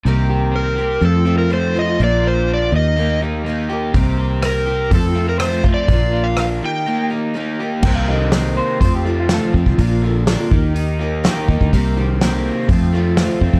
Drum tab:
CC |----------------|----------------|----------------|----------------|
HH |----------------|----------------|o---o---o---o---|o---o-----------|
SD |----------------|----------------|----r-------r---|----r-----------|
BD |----------------|----------------|o-------o-----o-|o---------------|

CC |x---------------|----------------|----------------|
HH |----o---o---o---|o---o---o---o---|o---o---o---o---|
SD |----o-------o---|----o-------o---|----o-------o---|
BD |o-------o-----oo|o-----o-------oo|o-------o-----oo|